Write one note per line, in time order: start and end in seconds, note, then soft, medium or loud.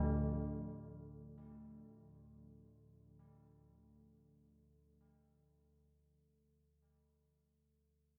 0.00 1.52 D2 medium
0.00 1.52 D3 medium
0.00 6.84 D3 medium
0.00 1.39 A3 medium
0.00 1.42 A3 medium
0.00 1.39 F4 medium
0.00 3.21 F4 medium
0.00 1.41 A4 medium
0.00 1.39 D5 medium